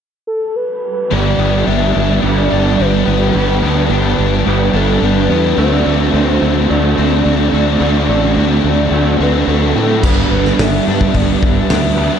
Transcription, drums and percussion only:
10.03 kick, crash
10.45 snare
10.59 snare, open hi-hat
11.01 kick
11.14 kick, open hi-hat
11.43 kick
11.70 snare, open hi-hat

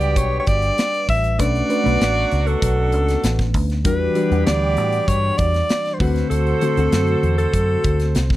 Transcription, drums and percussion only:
0.01 closed hi-hat
0.16 kick, closed hi-hat
0.47 kick, closed hi-hat
0.62 closed hi-hat
0.78 snare, closed hi-hat
0.94 closed hi-hat
1.09 kick, open hi-hat
1.24 closed hi-hat
1.39 kick, closed hi-hat
1.55 closed hi-hat
1.70 closed hi-hat
1.86 closed hi-hat
2.01 snare, closed hi-hat
2.31 closed hi-hat
2.47 closed hi-hat
2.62 kick, closed hi-hat
2.92 closed hi-hat
3.08 snare, closed hi-hat
3.24 snare, closed hi-hat
3.39 kick, snare, closed hi-hat
3.54 kick, open hi-hat
3.70 snare, closed hi-hat
3.85 kick, closed hi-hat
4.15 closed hi-hat
4.32 closed hi-hat
4.47 snare, closed hi-hat
4.77 closed hi-hat
4.93 closed hi-hat
5.08 kick, closed hi-hat
5.38 kick, closed hi-hat
5.54 snare, closed hi-hat
5.69 snare, closed hi-hat
5.86 snare, closed hi-hat
6.00 kick, open hi-hat
6.16 snare, closed hi-hat
6.31 closed hi-hat
6.47 closed hi-hat
6.61 closed hi-hat
6.77 closed hi-hat
6.92 snare, closed hi-hat
7.07 closed hi-hat
7.23 closed hi-hat
7.39 closed hi-hat
7.53 kick, closed hi-hat
7.84 kick, closed hi-hat
8.00 snare, closed hi-hat
8.15 snare, closed hi-hat
8.30 kick, snare

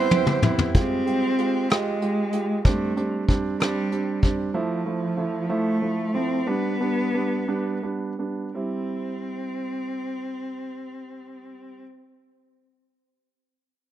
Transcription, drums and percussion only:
0.11 high tom
0.27 mid tom
0.43 mid tom
0.58 floor tom
0.75 kick, closed hi-hat
1.07 closed hi-hat
1.38 closed hi-hat
1.70 cross-stick, closed hi-hat
2.02 closed hi-hat
2.33 closed hi-hat
2.65 kick, closed hi-hat
2.97 closed hi-hat
3.29 kick, closed hi-hat
3.60 cross-stick, closed hi-hat
3.92 closed hi-hat
4.23 kick, closed hi-hat

